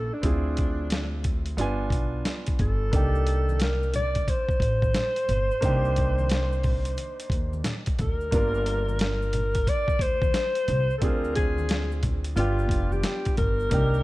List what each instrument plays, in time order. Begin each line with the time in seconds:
Already playing: grand piano A#3 C#4 E4 G4, alto saxophone A4
0.13 alto saxophone D4
0.22 upright bass D2, grand piano C4 E4 F4, kick, closed hi-hat
0.26 grand piano G#4
0.57 kick, closed hi-hat
0.90 snare, closed hi-hat
1.24 kick, closed hi-hat
1.46 closed hi-hat
1.57 upright bass G1, grand piano B3 D4 F4, closed hi-hat
1.61 grand piano G#5
1.90 upright bass B1, kick, closed hi-hat
2.25 snare, closed hi-hat
2.47 kick, closed hi-hat
2.59 upright bass G1, alto saxophone A4, kick, closed hi-hat
2.92 upright bass C2, grand piano A#3 D4 D#4, kick, closed hi-hat, maracas
2.96 grand piano G4
3.15 maracas
3.27 closed hi-hat, maracas
3.49 high conga, maracas
3.60 alto saxophone A#4, snare, closed hi-hat, maracas
3.83 maracas
3.94 alto saxophone D5, closed hi-hat, low conga, maracas
4.15 kick, closed hi-hat, maracas
4.28 alto saxophone C5, kick, closed hi-hat, high conga, maracas
4.49 kick, maracas
4.60 upright bass A1, kick, closed hi-hat, maracas
4.82 kick, high conga, maracas
4.94 snare, closed hi-hat, low conga, maracas
5.16 closed hi-hat, maracas
5.29 upright bass G1, closed hi-hat, low conga, maracas
5.51 maracas
5.61 upright bass C2, grand piano A#3 D4 D#4, kick, closed hi-hat, maracas
5.65 grand piano G4
5.85 maracas
5.96 kick, closed hi-hat, maracas
6.18 high conga, maracas
6.29 snare, closed hi-hat, maracas
6.52 maracas
6.63 kick, open hi-hat, low conga, maracas
6.85 closed hi-hat, maracas
6.97 closed hi-hat, high conga, maracas
7.20 closed hi-hat, maracas
7.30 upright bass D#2, kick, closed hi-hat, maracas
7.53 high conga, maracas
7.64 snare, closed hi-hat, low conga, maracas
7.86 kick, closed hi-hat, maracas
7.99 upright bass D2, alto saxophone A#4, kick, closed hi-hat, low conga, maracas
8.21 maracas
8.31 upright bass G1, grand piano A#3 D4 F4 A#4, kick, closed hi-hat, maracas
8.55 maracas
8.66 closed hi-hat, maracas
8.89 high conga, maracas
8.99 alto saxophone A#4, snare, closed hi-hat, maracas
9.22 maracas
9.33 closed hi-hat, low conga, maracas
9.55 kick, closed hi-hat, maracas
9.67 alto saxophone D5, kick, closed hi-hat, high conga, maracas
9.88 kick, maracas
9.99 upright bass D2, alto saxophone C5, kick, closed hi-hat, maracas
10.22 kick, high conga, maracas
10.34 snare, closed hi-hat, maracas
10.55 closed hi-hat, maracas
10.68 upright bass C2, closed hi-hat, low conga, maracas
10.90 maracas
10.98 upright bass D2, grand piano C4 D4, alto saxophone A4, closed hi-hat
11.02 grand piano F4 G#4, alto saxophone A#4, kick, maracas
11.24 maracas
11.35 alto saxophone G#4, kick, closed hi-hat, maracas
11.58 high conga, maracas
11.69 snare, closed hi-hat, maracas
11.92 maracas
12.03 kick, closed hi-hat, low conga, maracas
12.24 closed hi-hat, maracas
12.36 upright bass G1, grand piano B3 D4 F4 G4, alto saxophone F4, closed hi-hat, high conga, maracas
12.59 maracas
12.69 upright bass F1, kick, closed hi-hat, maracas
12.92 alto saxophone G4, high conga, maracas
13.03 snare, closed hi-hat, maracas
13.25 kick, closed hi-hat, maracas
13.37 upright bass G1, alto saxophone A#4, kick, closed hi-hat, low conga, maracas
13.60 maracas
13.70 upright bass C2, grand piano A#3 D4 D#4, kick, closed hi-hat, maracas
13.74 grand piano G4
13.94 maracas